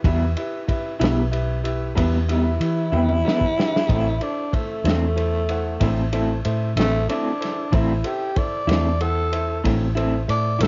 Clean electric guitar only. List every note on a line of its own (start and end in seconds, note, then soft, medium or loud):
0.05 0.24 E3 loud
0.05 0.24 G3 loud
0.05 0.24 B3 loud
0.05 0.24 E4 loud
1.00 1.21 G3 soft
1.00 1.20 B3 medium
1.00 1.19 E4 soft
1.95 2.15 E3 medium
1.95 2.15 G3 loud
1.95 2.16 B3 loud
1.95 2.16 E4 medium
2.29 2.49 G3 soft
2.29 2.49 B3 medium
2.29 2.48 E4 soft
2.92 3.13 G3 soft
2.92 3.12 B3 soft
2.92 3.12 E4 medium
3.25 3.44 E3 medium
3.25 3.45 G3 medium
3.25 3.45 B3 medium
3.25 3.45 E4 medium
3.89 4.08 A2 medium
3.89 4.08 A3 loud
3.89 4.08 C4 medium
3.89 4.09 E4 loud
4.86 5.05 A3 soft
4.86 5.05 C4 soft
4.86 5.04 E4 soft
5.80 6.00 A2 medium
5.80 6.00 A3 medium
5.80 6.01 C4 medium
5.80 6.01 E4 medium
6.13 6.33 A3 medium
6.13 6.33 C4 soft
6.13 6.32 E4 medium
6.77 6.97 A3 soft
6.77 6.97 C4 soft
6.77 6.96 E4 medium
7.10 7.29 A2 medium
7.10 7.29 A3 medium
7.10 7.29 C4 medium
7.10 7.30 E4 medium
7.72 7.92 A2 medium
7.72 7.92 A3 medium
7.72 7.92 C4 loud
7.72 7.92 E4 loud
8.67 8.88 A3 soft
8.67 8.88 C4 medium
8.67 8.87 E4 soft
9.64 9.83 A2 medium
9.64 9.84 A3 medium
9.64 9.84 C4 medium
9.64 9.84 E4 medium
9.95 10.16 A3 soft
9.95 10.16 C4 medium
9.95 10.15 E4 medium
10.59 10.67 A3 soft
10.59 10.67 C4 medium
10.59 10.67 E4 medium